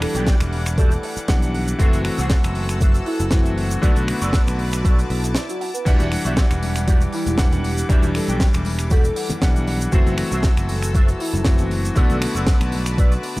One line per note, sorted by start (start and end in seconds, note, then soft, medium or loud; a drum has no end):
0.00 1.25 E3 medium
0.00 1.26 G3 medium
0.00 1.75 G3 medium
0.00 1.26 D4 medium
0.00 0.23 A4 medium
0.00 3.79 F#5 medium
0.00 1.76 D6 medium
0.00 finger snap medium
0.00 open hi-hat loud
0.14 0.30 B1 medium
0.14 0.33 F#4 medium
0.14 0.34 G4 medium
0.14 0.34 D5 medium
0.14 0.34 G5 loud
0.14 closed hi-hat medium
0.14 shaker medium
0.27 kick loud
0.27 snare loud
0.27 closed hi-hat medium
0.27 shaker medium
0.40 0.96 E1 medium
0.40 finger snap medium
0.40 closed hi-hat medium
0.40 shaker soft
0.52 muted clean electric guitar stroke soft
0.52 open hi-hat medium
0.66 finger snap medium
0.66 closed hi-hat medium
0.66 shaker medium
0.77 0.91 F#4 medium
0.77 0.91 G4 medium
0.77 1.17 A4 loud
0.77 0.92 D5 medium
0.77 0.92 E5 medium
0.77 kick loud
0.77 closed hi-hat loud
0.77 shaker medium
0.91 closed hi-hat medium
0.91 shaker medium
1.03 muted clean electric guitar stroke medium
1.03 open hi-hat loud
1.16 muted clean electric guitar stroke soft
1.16 muted picked electric bass stroke soft
1.16 closed hi-hat medium
1.16 shaker medium
1.28 1.72 B1 loud
1.28 1.76 E3 medium
1.28 1.76 G3 medium
1.28 1.77 D4 medium
1.28 1.52 D5 medium
1.28 1.77 F#5 medium
1.28 kick loud
1.28 snare loud
1.28 closed hi-hat loud
1.28 shaker medium
1.42 closed hi-hat medium
1.42 shaker medium
1.53 muted clean electric guitar stroke soft
1.53 open hi-hat medium
1.68 closed hi-hat medium
1.68 shaker medium
1.79 1.88 F#1 loud
1.79 3.29 E3 medium
1.79 3.29 A3 medium
1.79 3.29 C4 medium
1.79 1.99 F#4 loud
1.79 3.30 F#4 loud
1.79 1.99 A4 loud
1.79 3.81 A4 medium
1.79 1.99 C5 loud
1.79 1.99 E5 loud
1.79 3.81 E6 loud
1.79 kick loud
1.79 closed hi-hat loud
1.79 shaker medium
1.93 2.08 F#1 loud
1.93 closed hi-hat medium
1.93 shaker medium
2.05 finger snap medium
2.05 open hi-hat loud
2.18 2.33 C2 medium
2.18 2.37 F#4 medium
2.18 2.37 A4 medium
2.18 2.37 C5 medium
2.18 2.38 F#5 loud
2.18 closed hi-hat medium
2.18 shaker medium
2.30 kick loud
2.30 snare loud
2.30 closed hi-hat loud
2.30 shaker medium
2.43 2.99 F#1 medium
2.43 finger snap medium
2.43 closed hi-hat medium
2.43 shaker medium
2.55 muted clean electric guitar stroke soft
2.55 open hi-hat medium
2.69 finger snap medium
2.69 closed hi-hat medium
2.69 shaker medium
2.81 2.94 F#4 medium
2.81 2.95 A4 medium
2.81 2.95 C5 medium
2.81 2.95 E5 medium
2.81 kick loud
2.81 closed hi-hat loud
2.81 shaker medium
2.94 closed hi-hat medium
2.94 shaker medium
3.06 3.28 E4 loud
3.06 muted clean electric guitar stroke medium
3.06 open hi-hat loud
3.19 3.75 F#1 medium
3.19 muted clean electric guitar stroke soft
3.19 closed hi-hat medium
3.19 shaker medium
3.31 3.80 E3 medium
3.31 3.80 A3 medium
3.31 3.80 C4 medium
3.31 3.54 E4 medium
3.31 3.80 F#4 medium
3.31 kick loud
3.31 snare loud
3.31 closed hi-hat loud
3.31 shaker medium
3.45 closed hi-hat medium
3.45 shaker medium
3.58 open hi-hat medium
3.71 closed hi-hat medium
3.71 shaker medium
3.82 3.91 B1 loud
3.82 5.32 D3 medium
3.82 5.32 A3 medium
3.82 5.33 B3 medium
3.82 4.02 F#4 loud
3.82 5.33 F#4 loud
3.82 4.02 A4 loud
3.82 4.02 B4 loud
3.82 5.84 B4 medium
3.82 4.03 D5 loud
3.82 5.84 A5 medium
3.82 5.84 D6 medium
3.82 kick loud
3.82 closed hi-hat loud
3.82 shaker medium
3.96 4.11 B1 loud
3.96 closed hi-hat medium
3.96 shaker soft
4.08 finger snap medium
4.08 open hi-hat loud
4.21 4.37 F#1 medium
4.21 4.40 F#4 medium
4.21 4.40 A4 medium
4.21 4.40 B4 medium
4.21 4.41 D5 loud
4.21 closed hi-hat medium
4.21 shaker medium
4.33 kick loud
4.33 snare loud
4.33 closed hi-hat loud
4.33 shaker medium
4.47 5.03 B1 medium
4.47 finger snap medium
4.47 closed hi-hat medium
4.47 shaker medium
4.58 muted clean electric guitar stroke soft
4.58 open hi-hat medium
4.71 finger snap medium
4.71 closed hi-hat medium
4.71 shaker medium
4.83 4.97 F#4 medium
4.83 4.98 A4 medium
4.83 4.98 B4 medium
4.83 4.98 D5 loud
4.83 kick loud
4.83 closed hi-hat loud
4.83 swell medium
4.83 shaker medium
4.99 closed hi-hat medium
4.99 shaker soft
5.09 5.35 B1 medium
5.09 muted clean electric guitar stroke medium
5.09 open hi-hat loud
5.23 muted clean electric guitar stroke soft
5.23 closed hi-hat medium
5.23 shaker medium
5.35 5.59 D5 medium
5.35 snare loud
5.35 closed hi-hat loud
5.35 shaker medium
5.49 5.70 F#4 medium
5.49 closed hi-hat medium
5.49 shaker medium
5.60 5.84 F#5 medium
5.60 muted clean electric guitar stroke soft
5.60 open hi-hat medium
5.74 5.91 B4 medium
5.74 closed hi-hat medium
5.74 shaker medium
5.85 5.95 E1 loud
5.85 7.35 E3 medium
5.85 7.36 G3 medium
5.85 9.89 G3 medium
5.85 7.36 D4 medium
5.85 6.05 F#4 loud
5.85 6.06 G4 loud
5.85 6.06 D5 loud
5.85 6.06 E5 loud
5.85 7.36 F#5 loud
5.85 9.89 D6 loud
5.85 kick loud
5.85 closed hi-hat loud
5.85 crash medium
5.85 tambourine medium
5.85 low conga loud
5.85 shaker medium
6.00 6.15 E1 loud
6.00 closed hi-hat medium
6.00 tambourine soft
6.00 high conga loud
6.00 shaker soft
6.12 finger snap medium
6.12 open hi-hat loud
6.12 tambourine loud
6.24 6.40 B1 medium
6.24 6.43 F#4 medium
6.24 6.44 G4 medium
6.24 6.44 D5 medium
6.24 6.44 E5 loud
6.24 closed hi-hat medium
6.24 tambourine soft
6.24 shaker medium
6.36 kick loud
6.36 snare loud
6.36 closed hi-hat loud
6.36 tambourine medium
6.36 shaker medium
6.50 7.06 E1 medium
6.50 finger snap medium
6.50 closed hi-hat medium
6.50 tambourine soft
6.50 shaker medium
6.62 muted clean electric guitar stroke soft
6.62 open hi-hat medium
6.62 tambourine loud
6.62 high conga medium
6.76 finger snap medium
6.76 closed hi-hat medium
6.76 tambourine soft
6.76 shaker medium
6.87 7.01 F#4 medium
6.87 7.01 G4 medium
6.87 7.02 D5 medium
6.87 7.02 F#5 loud
6.87 kick loud
6.87 closed hi-hat loud
6.87 tambourine medium
6.87 shaker medium
7.01 closed hi-hat medium
7.01 tambourine soft
7.01 shaker medium
7.13 7.35 E4 medium
7.13 muted clean electric guitar stroke loud
7.13 open hi-hat loud
7.13 tambourine medium
7.26 7.82 E1 medium
7.26 muted clean electric guitar stroke soft
7.26 closed hi-hat medium
7.26 tambourine soft
7.26 high conga loud
7.26 shaker medium
7.38 7.86 E3 medium
7.38 7.86 G3 medium
7.38 7.87 D4 medium
7.38 7.87 F#5 medium
7.38 kick loud
7.38 snare loud
7.38 closed hi-hat loud
7.38 tambourine medium
7.38 shaker medium
7.52 closed hi-hat medium
7.52 tambourine soft
7.52 low conga loud
7.52 shaker soft
7.63 muted clean electric guitar stroke soft
7.63 open hi-hat loud
7.63 tambourine medium
7.78 closed hi-hat medium
7.78 tambourine soft
7.78 shaker medium
7.89 7.98 E1 loud
7.89 9.39 E3 medium
7.89 9.39 G3 medium
7.89 9.40 D4 medium
7.89 8.09 F#4 loud
7.89 8.09 G4 loud
7.89 8.09 D5 loud
7.89 8.09 E5 loud
7.89 kick loud
7.89 closed hi-hat loud
7.89 tambourine medium
7.89 low conga loud
7.89 shaker medium
8.02 8.18 E1 loud
8.02 closed hi-hat medium
8.02 tambourine soft
8.02 high conga loud
8.02 shaker medium
8.15 8.37 A4 medium
8.15 finger snap medium
8.15 open hi-hat loud
8.15 tambourine loud
8.28 8.43 B1 medium
8.28 8.47 F#4 medium
8.28 8.47 G4 medium
8.28 8.47 D5 medium
8.28 8.47 G5 loud
8.28 closed hi-hat medium
8.28 shaker medium
8.40 kick loud
8.40 snare loud
8.40 closed hi-hat loud
8.40 tambourine medium
8.40 shaker medium
8.53 9.09 E1 medium
8.53 finger snap medium
8.53 closed hi-hat medium
8.53 tambourine soft
8.53 shaker medium
8.65 muted clean electric guitar stroke soft
8.65 open hi-hat medium
8.65 tambourine loud
8.65 high conga medium
8.79 finger snap medium
8.79 closed hi-hat medium
8.79 tambourine soft
8.79 shaker medium
8.90 9.04 F#4 medium
8.90 9.05 G4 medium
8.90 9.30 A4 medium
8.90 9.05 D5 medium
8.90 9.05 F#5 loud
8.90 kick loud
8.90 closed hi-hat loud
8.90 tambourine medium
8.90 shaker medium
9.04 closed hi-hat medium
9.04 tambourine soft
9.04 shaker medium
9.15 9.40 F#5 medium
9.15 muted clean electric guitar stroke loud
9.15 open hi-hat loud
9.15 tambourine loud
9.29 muted clean electric guitar stroke soft
9.29 muted picked electric bass stroke soft
9.29 closed hi-hat medium
9.29 tambourine soft
9.29 high conga loud
9.29 low conga loud
9.29 shaker medium
9.42 9.86 B1 loud
9.42 9.90 E3 medium
9.42 9.90 G3 medium
9.42 9.90 D4 medium
9.42 9.66 E5 medium
9.42 9.90 F#5 medium
9.42 kick loud
9.42 snare loud
9.42 closed hi-hat loud
9.42 tambourine medium
9.42 shaker medium
9.56 closed hi-hat medium
9.56 tambourine soft
9.56 shaker soft
9.67 9.69 E5 medium
9.67 muted clean electric guitar stroke soft
9.67 open hi-hat loud
9.67 tambourine medium
9.81 closed hi-hat medium
9.81 tambourine soft
9.81 shaker medium
9.92 10.01 F#1 loud
9.92 11.42 E3 medium
9.92 11.42 A3 medium
9.92 11.43 C4 medium
9.92 10.12 F#4 loud
9.92 11.43 F#4 loud
9.92 10.12 A4 loud
9.92 11.94 A4 medium
9.92 10.12 C5 loud
9.92 10.13 E5 loud
9.92 11.94 E6 loud
9.92 kick loud
9.92 closed hi-hat medium
9.92 tambourine soft
9.92 low conga loud
9.92 shaker medium
10.06 10.21 F#1 loud
10.06 closed hi-hat medium
10.06 tambourine soft
10.06 high conga loud
10.06 shaker medium
10.18 finger snap medium
10.18 open hi-hat loud
10.18 tambourine medium
10.31 10.47 C2 medium
10.31 10.50 F#4 medium
10.31 10.50 A4 medium
10.31 10.51 C5 medium
10.31 10.51 E5 loud
10.31 closed hi-hat medium
10.31 tambourine soft
10.31 shaker medium
10.43 kick loud
10.43 snare loud
10.43 closed hi-hat loud
10.43 tambourine medium
10.43 shaker medium
10.57 11.13 F#1 medium
10.57 finger snap medium
10.57 closed hi-hat medium
10.57 tambourine soft
10.57 shaker soft
10.68 muted clean electric guitar stroke soft
10.68 open hi-hat loud
10.68 tambourine loud
10.68 high conga medium
10.82 finger snap medium
10.82 closed hi-hat medium
10.82 tambourine soft
10.82 shaker medium
10.94 11.08 F#4 medium
10.94 11.08 A4 medium
10.94 11.08 C5 medium
10.94 11.09 E5 loud
10.94 kick loud
10.94 closed hi-hat loud
10.94 tambourine medium
10.94 shaker medium
11.08 closed hi-hat medium
11.08 tambourine soft
11.08 shaker medium
11.19 11.42 E4 loud
11.19 muted clean electric guitar stroke medium
11.19 open hi-hat loud
11.19 tambourine medium
11.33 11.89 F#1 medium
11.33 muted clean electric guitar stroke soft
11.33 closed hi-hat medium
11.33 tambourine soft
11.33 high conga medium
11.33 shaker medium
11.45 11.93 E3 medium
11.45 11.93 A3 medium
11.45 11.94 C4 medium
11.45 11.67 E4 medium
11.45 11.94 F#4 medium
11.45 kick loud
11.45 snare loud
11.45 closed hi-hat loud
11.45 tambourine medium
11.45 shaker medium
11.58 closed hi-hat soft
11.58 tambourine soft
11.58 low conga medium
11.58 shaker medium
11.70 muted clean electric guitar stroke soft
11.70 open hi-hat medium
11.70 tambourine medium
11.85 closed hi-hat medium
11.85 tambourine soft
11.85 shaker medium
11.95 12.05 B1 loud
11.95 13.40 D3 medium
11.95 13.40 A3 medium
11.95 13.40 B3 medium
11.95 12.15 F#4 loud
11.95 13.40 F#4 loud
11.95 12.16 A4 loud
11.95 13.40 B4 medium
11.95 12.16 B4 loud
11.95 12.16 D5 loud
11.95 13.40 A5 medium
11.95 13.40 D6 loud
11.95 kick loud
11.95 closed hi-hat loud
11.95 tambourine soft
11.95 low conga loud
11.95 shaker medium
12.10 12.25 B1 loud
12.10 closed hi-hat medium
12.10 tambourine soft
12.10 high conga loud
12.10 shaker soft
12.22 finger snap medium
12.22 open hi-hat loud
12.22 tambourine medium
12.35 12.50 F#1 medium
12.35 12.54 F#4 medium
12.35 12.54 A4 medium
12.35 12.54 B4 medium
12.35 12.54 D5 medium
12.35 closed hi-hat medium
12.35 tambourine soft
12.35 shaker medium
12.47 kick loud
12.47 snare loud
12.47 closed hi-hat medium
12.47 tambourine medium
12.47 shaker medium
12.60 13.16 B1 medium
12.60 finger snap medium
12.60 closed hi-hat medium
12.60 tambourine soft
12.60 shaker medium
12.72 muted clean electric guitar stroke soft
12.72 open hi-hat loud
12.72 tambourine medium
12.72 high conga medium
12.86 finger snap medium
12.86 closed hi-hat medium
12.86 tambourine soft
12.86 shaker medium
12.97 13.11 F#4 medium
12.97 13.11 A4 medium
12.97 13.12 B4 medium
12.97 13.12 D5 loud
12.97 kick loud
12.97 closed hi-hat loud
12.97 tambourine medium
12.97 shaker medium
13.11 closed hi-hat medium
13.11 tambourine soft
13.11 shaker soft
13.23 muted clean electric guitar stroke medium
13.23 open hi-hat loud
13.23 tambourine medium
13.36 muted clean electric guitar stroke soft
13.36 closed hi-hat medium
13.36 tambourine soft
13.36 low conga medium